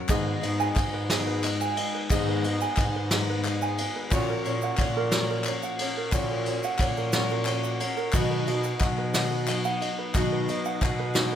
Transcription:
0.08 G#1 G#2 D#3 G#3 B3 D#4 G#4 B4 D#5, kick, clap, ride, shaker
0.27 B4
0.41 G#2 G#3 B3 D#4 B4 D#5, ride, shaker
0.59 G#5, clap, shaker
0.75 G#2 G#3 B3 D#4 B4 D#5, kick, clap, ride, shaker
0.93 B4, clap
1.09 G#2 D#3 G#3 B3 D#4 G#4 B4 D#5, snare, ride, shaker
1.27 B4
1.43 G#3 B3 D#4 B4 D#5, clap, ride, shaker
1.61 G#5, shaker
1.76 G#3 B3 D#4 B4 D#5, ride
1.94 B4
2.10 G#1 G#2 D#3 G#3 B3 D#4 G#4 B4 D#5, kick, clap, ride, shaker
2.28 B4
2.43 G#3 B3 D#4 B4 D#5, ride, shaker
2.61 G#5, shaker
2.77 G#2 G#3 B3 D#4 B4 D#5, kick, clap, ride, shaker
2.94 B4, clap
3.10 G#2 D#3 G#3 B3 D#4 G#4 B4 D#5, snare, ride, shaker
3.29 B4
3.44 G#3 B3 D#4 B4 D#5, clap, ride, shaker
3.62 G#5, shaker
3.78 G#3 B3 D#4 B4 D#5, ride
3.96 B4
4.11 A#1 A#2 A#3 C#4 F#4 A#4 C#5, kick, clap, ride, shaker
4.29 A#4
4.44 A#2 C#4 F#4 A#4 C#5, ride, shaker
4.61 F#5, clap, shaker
4.78 A#2 A#3 C#4 F#4 A#4 C#5, kick, clap, ride, shaker
4.95 A#4, clap
5.11 A#3 C#4 F#4 A#4 C#5, snare, ride, shaker
5.30 A#4
5.44 A#3 C#4 F#4 C#5, clap, ride, shaker
5.48 A#4
5.63 F#5, shaker
5.79 C#4 F#4 A#4 C#5, ride
5.97 A#4
6.12 A#1 A#2 A#3 C#4 F#4 A#4 C#5, kick, clap, ride, shaker
6.31 A#4
6.46 F#4 A#4 C#5, clap, ride, shaker
6.50 C#4
6.63 F#5, shaker
6.79 A#2 A#3 C#4 F#4 C#5, kick, clap, ride
6.83 A#4
6.97 A#4, shaker
7.12 A#3 C#4 F#4 A#4 C#5, snare, ride, shaker
7.29 A#4, clap, shaker
7.45 A#3 C#4 C#5, clap, ride
7.50 F#4 A#4
7.63 F#5, shaker
7.80 C#4 F#4 A#4 C#5, ride
7.97 A#4, shaker
8.13 B1 B2 D#3 F#3 B3 D#4 F#4 B4 D#5, kick, clap, ride, shaker
8.31 B4
8.46 B2 B3 D#4 B4 D#5, ride, shaker
8.51 F#3
8.63 F#5, clap, shaker
8.80 B2 F#3 B3 D#4 B4 D#5, kick, clap, ride, shaker
8.98 B4, clap
9.13 B2 D#3 F#3 B3 D#4 F#4 B4 D#5, snare, ride, shaker
9.31 B4
9.47 F#3 B3 D#4 B4 D#5, clap, ride, shaker
9.64 F#5, shaker
9.81 F#3 B3 D#4 B4 D#5, ride
9.98 B4
10.13 B1 B2 D#3 F#3 B3 D#4 F#4 B4 D#5, kick, clap, ride, shaker
10.32 B4
10.48 F#3 B3 D#4 B4 D#5, ride, shaker
10.65 F#5, clap, shaker
10.81 B2 F#3 B3 D#4 B4 D#5, kick, clap, ride, shaker
10.99 B4, clap
11.14 B2 D#3 F#3 B3 D#4 F#4 B4 D#5, snare, ride, shaker
11.32 B4

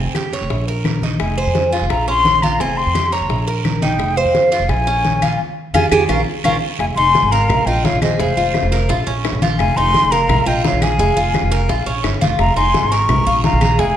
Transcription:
Already playing: C4
0.06 F2
0.15 G4, high bongo, high conga, short guiro, claves
0.33 C#5, high bongo, high conga, short guiro
0.41 F1
0.50 A#1, high bongo, high conga, long guiro
0.67 A#4, high bongo, high conga
0.85 high bongo, low bongo, high conga, short guiro, claves
1.02 D#4, high conga, short guiro
1.20 F1 G#5, high bongo, high conga, long guiro, claves
1.37 C5, high bongo, high conga
1.47 F2
1.55 high bongo, high conga, short guiro
1.72 F4, high bongo, high conga, short guiro
1.82 F1
1.90 A#1 A#5, high bongo, high conga, long guiro, claves
2.08 C#4 C6, high bongo, high conga
2.25 high bongo, low bongo, high conga, short guiro
2.42 F4 A#5, high conga, short guiro, claves
2.60 F1 C4 G#5, high bongo, high conga, long guiro
2.77 C6, high bongo, high conga
2.86 F2
2.95 G4, high bongo, high conga, short guiro, claves
3.12 C#5 A#5, high bongo, high conga, short guiro
3.21 F1
3.29 A#1, high bongo, high conga, long guiro
3.47 A#4, high bongo, high conga
3.65 high bongo, low bongo, high conga, short guiro, claves
3.82 D#4 G5, high conga, short guiro
3.99 F1, high bongo, high conga, long guiro, claves
4.17 C5 F5, high bongo, high conga
4.25 F2
4.35 high bongo, high conga, short guiro
4.52 F4, high bongo, high conga, short guiro
4.60 F1
4.69 A#1 G#5, high bongo, high conga, long guiro, claves
4.87 C#4, high bongo, high conga
5.04 high bongo, low bongo, high conga, short guiro
5.22 F4, high conga, short guiro, claves
5.74 F2 F4 G4 G#4 G#5, low bongo, high conga, long guiro, claves
5.92 F2 F4 G4 G#4 G#5, low bongo, high conga, long guiro, claves
6.09 A#1 C#4 F4 A#4 F5, low bongo, high conga, long guiro, claves
6.44 A#1 C#4 F4 A#4 F5, low bongo, high conga, long guiro, claves
6.79 F1 F5 G#5, high bongo, high conga, long guiro, claves
6.96 F1 D#4 G#5 C6, high conga
7.15 high bongo, high conga, short guiro
7.23 G#1
7.32 A#4 F5 A#5, high conga, short guiro
7.49 A#1, high bongo, high conga, low conga, long guiro, claves
7.66 A#1 F4 D#5 G5, high conga
7.84 C#5 F5, high bongo, low bongo, high conga, short guiro
7.92 A#1
8.02 G#4 C5 D#5, high conga, short guiro, claves
8.19 F1 G#3 C5 F5, high bongo, high conga, long guiro
8.37 F1 F4, high conga
8.54 high bongo, high conga, short guiro, claves
8.63 F1
8.72 A#4, high bongo, high conga, short guiro
8.89 A#1 F4, high bongo, long guiro
9.06 A#1 C#4, high bongo, high conga
9.24 high bongo, low bongo, high conga, short guiro, claves
9.33 A#1
9.42 F4, high bongo, high conga, short guiro
9.59 F1 F5 G#5, high bongo, high conga, long guiro, claves
9.76 F1 D#4 G#5 C6, high conga
9.94 high bongo, high conga, short guiro
10.03 F1
10.11 A#4 F5 A#5, high conga, short guiro
10.28 A#1, high bongo, high conga, low conga, long guiro, claves
10.46 A#1 F4 D#5 G5, high conga
10.64 C#5 F5, high bongo, low bongo, high conga, short guiro
10.72 A#1
10.82 G#4 F5 G#5, high conga, short guiro, claves
10.99 F1 G#3, high bongo, high conga, long guiro
11.17 F1 F4, high conga
11.34 high bongo, high conga, short guiro, claves
11.43 F1
11.51 A#4, high bongo, high conga, short guiro
11.69 A#1 F4, high bongo, high conga, long guiro
11.86 A#1 C#4, high bongo, high conga
12.04 G1, high bongo, low bongo, high conga, short guiro, claves
12.21 F1 F4, high bongo, high conga, short guiro
12.39 F1 F5 A#5, high bongo, high conga, long guiro, claves
12.56 F1 D#4 G#5 C6, high conga
12.74 high bongo, high conga, short guiro
12.82 G#1
12.92 A#4 A#5 C#6, high conga, short guiro
13.09 A#1, high bongo, high conga, low conga, long guiro, claves
13.27 A#1 F4, high conga
13.44 F5 A#5, high bongo, low bongo, high conga, short guiro
13.53 A#1
13.61 G#4, high conga, short guiro, claves
13.79 F1 G#3 F5 G#5, high bongo, high conga, long guiro

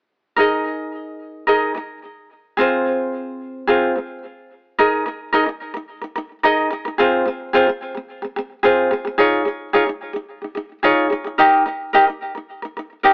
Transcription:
0.36 D#4 G#4 A#4 D#5
1.47 D#4 G#4 A#4 D#5
1.75 D#4 A#4
2.57 C4 F4 G#4 C5
3.67 C4 F4 G#4 C5
3.96 C4 G#4
4.78 D#4 G#4 A#4 D#5
5.06 D#4 A#4
5.33 D#4 G#4 A#4 D#5
5.46 D#4 A#4
5.74 D#4 A#4
6.02 D#4 A#4
6.16 D#4 A#4
6.43 D#4 G#4 A#4 D#5
6.70 D#4 A#4
6.85 D#4 A#4
6.98 C4 F4 G#4 C5
7.26 C4 G#4
7.53 C4 F4 G#4 C5
7.69 C4
7.95 C4 G#4
8.22 C4 G#4
8.36 C4 G#4
8.63 C4 F4 G#4 C5
8.91 C4 G#4
9.05 C4 G#4
9.18 D#4 F4 G#4 C#5
9.45 D#4 G#4
9.73 D#4 F4 G#4 C#5
9.89 D#4
10.13 D#4 G#4
10.42 D#4 G#4
10.55 D#4 G#4
10.83 D#4 F4 G#4 C#5
11.10 D#4 G#4
11.24 D#4 G#4
11.38 D#4 G4 A#4 D#5
11.66 D#4 A#4
11.93 D#4 G4 A#4 D#5
12.10 D#4
12.35 D#4 A#4
12.62 D#4 A#4
12.77 D#4 A#4
13.03 D#4 G4 A#4 D#5

